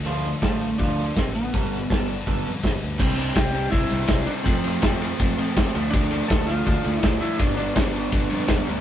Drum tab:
CC |--------|--------|x-------|--------|
RD |--------|--------|-xxxxxxx|xxxxxxxx|
HH |xxxxxxxx|xxxxxxxx|--------|--------|
SD |--o---o-|--o---o-|--o---o-|--o---o-|
BD |--o-o-o-|o-o-o-o-|o-o-o-o-|o-o-o-o-|

CC |--------|--------|
RD |xxxxxxxx|xxxxxxxx|
HH |--------|--------|
SD |--o---o-|--o---o-|
BD |o-o-o-o-|o-o-o-o-|